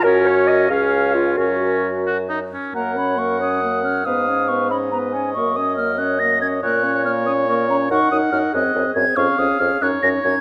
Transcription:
<<
  \new Staff \with { instrumentName = "Flute" } { \time 6/8 \key fis \major \tempo 4. = 93 ais'8 cis''8 dis''8 eis''4 eis'8 | fis'4. r4. | ais''8 b''8 cis'''8 dis'''4 eis'''8 | dis'''4 cis'''8 b''8 ais''8 gis''8 |
cis'''8 dis'''8 eis'''8 fis'''8 ais'''8 gis'''8 | fis'''4 eis'''8 dis'''8 cis'''8 ais''8 | \key ees \dorian des'''8 ees'''8 f'''8 ges'''4 aes'''8 | des'''8 ees'''8 f'''8 ges'''8 bes'''8 aes'''8 | }
  \new Staff \with { instrumentName = "Oboe" } { \time 6/8 \key fis \major cis'4. cis'4. | cis'4. fis'8 dis'8 cis'8 | fis''2. | eis''4. dis''4.~ |
dis''2. | cis''2. | \key ees \dorian ges''4. ees''4 r8 | f''4. des''4. | }
  \new Staff \with { instrumentName = "Clarinet" } { \time 6/8 \key fis \major ais'8 cis''8 dis''8 eis''4 eis'8 | fis'4. r4. | ais'8 cis''8 ais'8 cis''8 ais'8 cis''8 | b'8 cis''8 b'8 cis''8 b'8 cis''8 |
ais'8 cis''8 ais'8 cis''8 ais'8 cis''8 | ais'8 cis''8 ais'8 cis''8 ais'8 cis''8 | \key ees \dorian bes'8 bes'8 bes'8 aes'8 aes'8 aes'8 | aes'8 aes'8 aes'8 ees'8 ees'8 ees'8 | }
  \new Staff \with { instrumentName = "French horn" } { \time 6/8 \key fis \major fis'4. gis'4. | ais'2~ ais'16 r8. | ais8 cis'8 ais8 cis'8 ais8 cis'8 | b8 cis'8 b8 cis'8 b8 cis'8 |
ais8 cis'8 ais8 cis'8 ais8 cis'8 | ais8 cis'8 ais8 cis'8 ais8 cis'8 | \key ees \dorian ees'8 ees'8 ees'8 c'8 c'8 c'8 | des'8 des'8 des'8 des'8 des'8 des'8 | }
  \new Staff \with { instrumentName = "Bassoon" } { \clef bass \time 6/8 \key fis \major fis,4. cis,4. | fis,2~ fis,8 r8 | fis,2. | gis,2. |
fis,2. | ais,2. | \key ees \dorian ges,8 ges,8 ges,8 ges,8 ges,8 ges,8 | f,8 f,8 f,8 ges,8 ges,8 ges,8 | }
>>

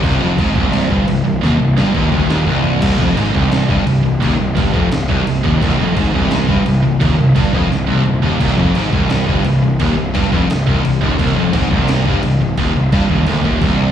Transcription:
<<
  \new Staff \with { instrumentName = "Distorted electric guitar" } { \clef bass \time 4/4 \key c \minor \tempo 4 = 172 c,8 f,8 aes,8 c,4 g,8 c,8 c,8 | ees,8 c,8 g,8 ees,8 d,8 ees,8 c,4 | c,8 f,8 aes,8 c,4 g,8 c,8 c,8 | ees,8 c,8 g,8 f,8 c,8 c,8 c,8 ees,8 |
c,8 f,8 aes,8 c,4 g,8 c,8 c,8 | ees,8 c,8 g,8 f,8 c,8 c,8 c,8 ees,8 | c,8 f,8 aes,8 c,4 g,8 c,8 c,8 | ees,8 c,8 g,8 f,8 c,8 c,8 c,8 ees,8 |
c,8 f,8 aes,8 c,4 g,8 c,8 c,8 | ees,8 c,8 g,8 ees,8 d,8 ees,8 c,4 | }
  \new Staff \with { instrumentName = "Distorted electric guitar" } { \clef bass \time 4/4 \key c \minor c,8 f,8 aes,8 c,4 g,8 c,8 c,8 | ees,8 c,8 g,8 ees,8 d,8 ees,8 c,4 | c,8 f,8 aes,8 c,4 g,8 c,8 c,8 | ees,8 c,8 g,8 f,8 c,8 c,8 c,8 ees,8 |
c,8 f,8 aes,8 c,4 g,8 c,8 c,8 | ees,8 c,8 g,8 f,8 c,8 c,8 c,8 ees,8 | c,8 f,8 aes,8 c,4 g,8 c,8 c,8 | ees,8 c,8 g,8 f,8 c,8 c,8 c,8 ees,8 |
c,8 f,8 aes,8 c,4 g,8 c,8 c,8 | ees,8 c,8 g,8 ees,8 d,8 ees,8 c,4 | }
  \new Staff \with { instrumentName = "Distorted electric guitar" } { \clef bass \time 4/4 \key c \minor c,8 f,8 aes,8 c,4 g,8 c,8 c,8 | ees,8 c,8 g,8 ees,8 d,8 ees,8 c,4 | c,8 f,8 aes,8 c,4 g,8 c,8 c,8 | ees,8 c,8 g,8 f,8 c,8 c,8 c,8 ees,8 |
c,8 f,8 aes,8 c,4 g,8 c,8 c,8 | ees,8 c,8 g,8 f,8 c,8 c,8 c,8 ees,8 | c,8 f,8 aes,8 c,4 g,8 c,8 c,8 | ees,8 c,8 g,8 f,8 c,8 c,8 c,8 ees,8 |
c,8 f,8 aes,8 c,4 g,8 c,8 c,8 | ees,8 c,8 g,8 ees,8 d,8 ees,8 c,4 | }
  \new Staff \with { instrumentName = "Picked electric bass" } { \clef bass \time 4/4 \key c \minor c,,8 f,,8 aes,,8 c,,4 g,,8 c,,8 c,,8 | ees,,8 c,,8 g,,8 ees,,8 d,,8 ees,,8 c,,4 | c,,8 f,,8 aes,,8 c,,4 g,,8 c,,8 c,,8 | ees,,8 c,,8 g,,8 f,,8 c,,8 c,,8 c,,8 ees,,8 |
c,,8 f,,8 aes,,8 c,,4 g,,8 c,,8 c,,8 | ees,,8 c,,8 g,,8 f,,8 c,,8 c,,8 c,,8 ees,,8 | c,,8 f,,8 aes,,8 c,,4 g,,8 c,,8 c,,8 | ees,,8 c,,8 g,,8 f,,8 c,,8 c,,8 c,,8 ees,,8 |
c,,8 f,,8 aes,,8 c,,4 g,,8 c,,8 c,,8 | ees,,8 c,,8 g,,8 ees,,8 d,,8 ees,,8 c,,4 | }
  \new DrumStaff \with { instrumentName = "Drums" } \drummode { \time 4/4 <cymc bd>4 <cymc bd>8 bd8 cymc8 bd8 cymc4 | sn4 sn8 bd8 bd8 sn8 tomfh8 tomfh8 | <cymc bd>8 bd8 cymc8 bd8 <cymc sn>8 bd8 cymc4 | <cymc bd>4 <cymc bd>8 bd8 <cymc sn>8 bd8 cymc8 bd8 |
<cymc bd>4 <cymc bd>8 bd8 <cymc sn>8 bd8 cymc4 | <cymc bd>4 <cymc bd>8 bd8 sn8 tommh8 toml8 tomfh8 | <cymc bd>8 bd8 cymc8 bd8 <cymc sn>8 bd8 cymc4 | <cymc bd>4 <cymc bd>8 bd8 <cymc sn>8 bd8 cymc8 bd8 |
<cymc bd>4 <cymc bd>8 bd8 <cymc sn>8 bd8 cymc4 | <cymc bd>4 <cymc bd>8 bd8 cymc8 bd8 <cymc bd>4 | }
>>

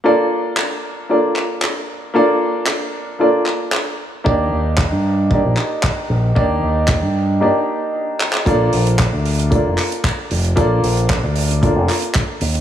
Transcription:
<<
  \new Staff \with { instrumentName = "Grand piano" } { \time 4/4 \key bes \major \tempo 4 = 114 <bes d' f' a' d''>2 <bes d' f' a' d''>2 | <bes d' f' a' d''>2 <bes d' f' a' d''>4. r8 | <bes d' ees' g' d''>2 <bes d' ees' g' d''>2 | <bes d' ees' g' d''>2 <bes d' ees' g' d''>2 |
<bes d' f' a' d''>2 <bes d' f' a' d''>2 | <bes d' f' a' d''>2 <bes d' f' a' d''>4. r8 | }
  \new Staff \with { instrumentName = "Fingered electric bass" } { \clef bass \time 4/4 \key bes \major r1 | r1 | ees,8 ees,8. g,4 bes,,16 r4 bes,,8 | ees,8 ees,8. g,8. r2 |
bes,,8 bes,,8. d,4 f,,16 r4 f,,8 | bes,,8 bes,,8. d,4 f,,16 r4 ees,8 | }
  \new DrumStaff \with { instrumentName = "Drums" } \drummode { \time 4/4 r4 hc4 r8 hc8 hc4 | r4 hc4 r8 hc8 hc4 | bd4 <hc bd>4 bd8 hc8 <hc bd>4 | bd4 <hc bd>4 r4 r8 hc16 hc16 |
<hh bd>8 hho16 hh16 <hc hh bd>8 hho16 hh16 <hh bd>8 <hc hho>16 hh16 <hc hh bd>8 hho16 hh16 | <hh bd>8 hho16 hh16 <hc hh bd>8 hho16 hh16 <hh bd>8 <hc hho>16 hh16 <hc hh bd>8 hho16 hh16 | }
>>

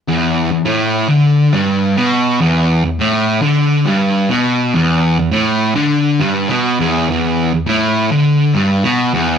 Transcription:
\new Staff \with { instrumentName = "Distorted electric guitar" } { \clef bass \time 4/4 \key e \minor \tempo 4 = 102 e,8. e,16 a,8. d8. g,8. b,8. | e,8. e,16 a,8. d8. g,8. b,8. | e,8. e,16 a,8. d8. g,8 b,8 e,8 | e,8. e,16 a,8. d8. g,8 b,8 e,8 | }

